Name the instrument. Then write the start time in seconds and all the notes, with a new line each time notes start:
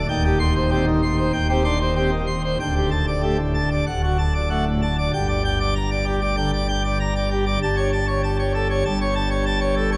pipe organ
0.09 D#1 D#2 G5
0.24 G4
0.39 C6
0.55 C5
0.71 C4 G4
0.86 D#3
1.03 C6
1.18 C5
1.33 D#1 D#2 G5
1.49 C4 G4
1.64 D4 C6
1.80 C5
1.96 C4 G4
2.11 D#3
2.27 C6
2.44 C5
2.60 D1 D2 G5
2.75 G4
2.91 A5
3.08 D5
3.23 A3 G4
3.38 A2
3.54 A5
3.71 D5
3.87 D1 D2 F#5
4.03 F#4
4.18 A5
4.34 D5
4.50 A3 F#4
4.67 A2
4.82 A5
4.98 D5
5.13 G1 G2 G5
5.28 D5
5.45 G5
5.60 D5
5.76 A#5
5.91 D5
6.06 G4
6.21 D5
6.37 D3 G5
6.53 D5
6.69 G5
6.84 D5
7.00 A#5
7.16 D5
7.31 G4
7.46 D5
7.62 G1 G2 A5
7.77 C#5
7.93 A5
8.07 C#5
8.23 A5
8.39 C#5
8.54 A4
8.70 C#5
8.85 G1 G2 A5
9.01 C#5
9.15 A5
9.31 C#5
9.46 A5
9.61 C#5
9.77 A4
9.92 C#5